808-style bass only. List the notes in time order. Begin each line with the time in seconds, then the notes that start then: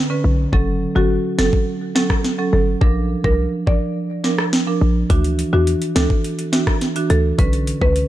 0.24 B1
0.53 F#1
0.96 G1
1.39 F#1
2.53 G1
2.81 A#1
3.24 C2
3.67 A1
4.81 A#1
5.10 D2
5.53 E2
5.96 C#2
7.10 D2
7.39 B1
7.82 C#2